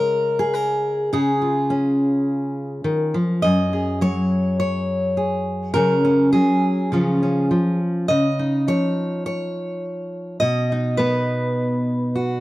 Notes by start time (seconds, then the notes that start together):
Already playing: C#3 G#3 A#4
0.39 G#4
0.53 A#4
1.13 C#3 G#4
1.42 F4
1.70 C#4
2.84 D#3
3.14 F3
3.42 F#2 D#5
3.73 G#4
4.01 F#3 C#5
4.60 C#5
5.17 G#4
5.74 C#3 F#3 C#4 A#4
6.05 C#4
6.33 F#3 G#4
6.92 C#3 F3 C#4 F4
7.23 C#4
7.51 F3
8.08 C#3 D#5
8.39 D#4
8.68 F3 C#5
9.26 C#5
10.40 B2 D#5
10.72 D#4
10.97 B3 B4
12.15 F#4